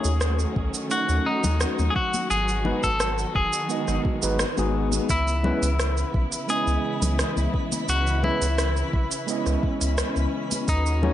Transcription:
Already playing: D#3 F#3 A3 C#4 F#4 G#4
0.04 D#2, shaker
0.21 cross-stick, shaker
0.39 shaker
0.56 C#2, kick
0.74 shaker
0.89 A3 C#4 D#4 F#4 F#5, shaker
1.09 D#2, shaker
1.26 D#4
1.44 D#2, low conga, shaker
1.61 cross-stick, shaker
1.79 D#2, high conga, shaker
1.90 G#4
1.96 F#4, kick
2.14 high conga, shaker
2.30 G#1 D#3 B3 G#4, shaker
2.48 shaker
2.64 G#3 B3 D#4 F#4 B4, low conga
2.84 G#1 A4, kick, shaker
3.00 cross-stick, shaker
3.18 shaker
3.35 F#1 G#4, kick
3.53 shaker
3.69 G#3 B3 D#4 F#4 D#5, shaker
3.88 G#1, cross-stick, shaker
4.05 kick
4.22 G#1 G#3 B3 D#4 F#4 B4, shaker
4.39 cross-stick, shaker
4.57 G#1 G#3 B3 D#4 F#4 G#4, high conga, shaker
4.92 high conga, shaker
5.09 C#2 C#3 E3 E4 B4 B5, kick, open hi-hat, shaker
5.28 shaker
5.43 G#3 B3 C#4 E4 B4, low conga
5.62 C#2, open hi-hat, shaker
5.80 cross-stick, open hi-hat, shaker
5.97 shaker
6.14 B1, kick
6.32 open hi-hat, shaker
6.48 G#3 B3 C#4 E4 G#4 D#5, open hi-hat, shaker
6.67 C#2, shaker
7.02 C#2, open hi-hat, low conga, shaker
7.19 cross-stick, open hi-hat, shaker
7.37 C#2, high conga, shaker
7.54 kick
7.72 open hi-hat, high conga, shaker
7.89 C#2 C#4 F#4, open hi-hat, shaker
8.07 shaker
8.23 G#3 B3 C#4 E4 B4, low conga
8.42 C#2, open hi-hat, shaker
8.58 cross-stick, open hi-hat, shaker
8.77 shaker
8.93 B1, kick
9.11 open hi-hat, shaker
9.27 G#3 B3 C#4 E4 D#5, open hi-hat, shaker
9.46 C#2, cross-stick, shaker
9.63 kick
9.81 C#2, open hi-hat, shaker
9.98 cross-stick, open hi-hat, shaker
10.16 C#2, high conga, shaker
10.51 open hi-hat, high conga, shaker
10.68 D#2 D#3 F#3 A3 D#4 F#4, kick, open hi-hat, shaker
10.86 shaker
11.02 A3 C#4 D#4 F#4 C#5, low conga

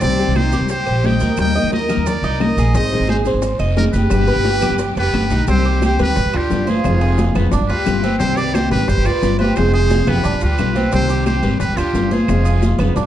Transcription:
0.01 C2 C3 D#3 G3 C4 G4 D5, high bongo, high conga, long guiro, maracas
0.18 D#3 G3 C4 G4, high bongo, high conga, maracas
0.28 C2
0.35 D#4 G4 C5, high bongo, high conga, short guiro, claves, maracas
0.52 D#3 G3 C4 G4, high bongo, high conga, short guiro, maracas
0.61 C2
0.69 G4 C5, muted nylon-string guitar stroke, high bongo, high conga, long guiro, maracas
0.86 A#1 C5, high bongo, high conga, claves, maracas
1.03 D#3 G3 C4 G4 D#5 G5, high bongo, low bongo, high conga, short guiro, maracas
1.20 D2 A#4, high conga, short guiro, maracas
1.37 D#2 D#3 G3 A#3 D#4 G4 D#5 G5, high bongo, high conga, claves, maracas
1.55 G3 A#3 D#4 G4 D#5, high bongo, high conga, maracas
1.63 D#2
1.72 A#4 D#5, high bongo, high conga, short guiro, maracas
1.89 G3 A#3 D#4 G4 A#4, high bongo, low conga, short guiro, claves, maracas
1.97 D#2
2.06 A#4 D5, muted nylon-string guitar stroke, high bongo, high conga, low conga, long guiro, maracas
2.22 C2 D#4, high bongo, high conga, maracas
2.40 G3 A#3 D#4 G4 A#4 D#5, high bongo, low bongo, high conga, short guiro, claves, maracas
2.57 A#1 G#4, short guiro, maracas
2.74 G#1 D#3 G#3 C4 D#4 G#4 C5 D#5, high bongo, long guiro, maracas
2.91 G#3 C4 D#4 G#4, high bongo, high conga, maracas
3.00 G#1
3.08 G#4 C5, high bongo, high conga, short guiro, claves, maracas
3.24 G#3 C4 D#4 G#4 C5, high bongo, high conga, short guiro, maracas
3.34 G#1
3.42 muted nylon-string guitar stroke, high bongo, high conga, long guiro, maracas
3.59 F1 D#5, high bongo, high conga, claves, maracas
3.76 G#3 C4 D#4 G#4 A#4, high bongo, low bongo, high conga, short guiro, maracas
3.93 F#1 G4 B4, high conga, short guiro, maracas
4.10 G1 B2 D3 G3 B3 G4, high bongo, high conga, long guiro, claves, maracas
4.27 D3 G3 B3 G4 B4, high bongo, maracas
4.36 G1
4.45 high bongo, high conga, short guiro, maracas
4.60 D3 G3 B3 G4, high bongo, low conga, short guiro, claves, maracas
4.70 G1
4.78 muted nylon-string guitar stroke, high bongo, high conga, long guiro, maracas
4.96 F1 B3 G4 B4, high bongo, high conga, maracas
5.13 G1 D3 G3 B3 G4, high bongo, low bongo, high conga, short guiro, claves, maracas
5.30 B1 D#4, high conga, short guiro, maracas
5.47 C2 C3 D#3 G3 C4 G4 C5, high bongo, high conga, long guiro, maracas
5.65 G4, high bongo, high conga
5.82 G4 C5, high bongo, high conga, short guiro, claves, maracas
5.98 D2 D#3 G3 C4 G4 B4, high bongo, high conga, short guiro, maracas
6.15 G1, muted nylon-string guitar stroke, high bongo, high conga, long guiro, maracas
6.25 G1
6.33 D2 D4 F4, high bongo, high conga, claves
6.37 G4
6.50 G1 G3 B3 F4, high bongo, low bongo, high conga, short guiro, maracas
6.67 B3 F4 G#4 C5, high conga, short guiro, maracas
6.84 F1 C3 F3 G#3 C4 F4, high bongo, high conga, long guiro, claves, maracas
7.01 G#4, high bongo
7.18 high bongo, high conga, short guiro, maracas
7.35 F1 F3 G#3 B3 C4 F4, high bongo, high conga, low conga, short guiro, claves, maracas
7.52 G1 D4, muted nylon-string guitar stroke, high bongo, high conga, long guiro, maracas
7.61 G1
7.69 D2 F4 G4 B4, high bongo, high conga
7.85 G1 G3 B3 F4, high bongo, low bongo, high conga, short guiro, claves, maracas
8.02 B3 C4 F4, high conga, short guiro, maracas
8.19 C2 C3 D#3 G3 C4 G4 C5, high bongo, long guiro, maracas
8.37 G4 B4 D5, high bongo, high conga, maracas
8.54 G4 C5, high bongo, high conga, short guiro, claves, maracas
8.70 G#1 D#3 G3 C4 G4 B4, high bongo, high conga, short guiro, maracas
8.88 G1 G4 C5, muted nylon-string guitar stroke, high bongo, maracas
8.98 G1
9.05 D2 F4 B4 D5, high bongo, high conga, claves, maracas
9.22 G1 G3 B3 F4, high bongo, low bongo, high conga, short guiro, maracas
9.39 B3 F4 G4 B4 C5, high conga, short guiro, maracas
9.56 F1 C3 F3 G#3 C4 F4 G#4 C5, high bongo, high conga, claves, maracas
9.73 G#4 C5, high bongo
9.90 high bongo, high conga, short guiro, maracas
10.07 F1 F3 G#3 B3 C4 F4 G4 B4, high bongo, high conga, low conga, short guiro, claves, maracas
10.23 G1 D4, muted nylon-string guitar stroke, high bongo, high conga, low conga, long guiro, maracas
10.33 G1
10.41 D2 F4 G4 B4, high bongo, high conga, maracas
10.58 B1 G3 B3 F4, high bongo, low bongo, high conga, short guiro, claves, maracas
10.75 B3 C4 F4, high conga, short guiro, maracas
10.92 C2 C3 D#3 G3 C4 G4 C5, high bongo, long guiro, maracas
11.09 G4, high bongo, high conga, maracas
11.26 G4 C5, high bongo, high conga, short guiro, claves, maracas
11.43 G#1 D#3 G3 C4 G4 B4, high bongo, high conga, short guiro, maracas
11.60 G1 G4 B4, muted nylon-string guitar stroke, high bongo, high conga, long guiro, maracas
11.68 G1
11.77 D2 D4 F4 G4, high bongo, high conga, claves, maracas
11.93 G1 G3 B3 F4, high bongo, low bongo, high conga, short guiro, maracas
12.11 B3 F4 G#4 C5, high conga, short guiro, maracas
12.28 F1 C3 F3 G#3 C4 F4, high bongo, high conga, long guiro, claves, maracas
12.45 G#4, high bongo, high conga, maracas
12.62 high bongo, high conga, short guiro, maracas
12.79 F1 F3 G#3 B3 C4 F4, high bongo, high conga, low conga, short guiro, claves, maracas
12.96 G1 D4, muted nylon-string guitar stroke, high bongo, high conga, low conga, long guiro, maracas

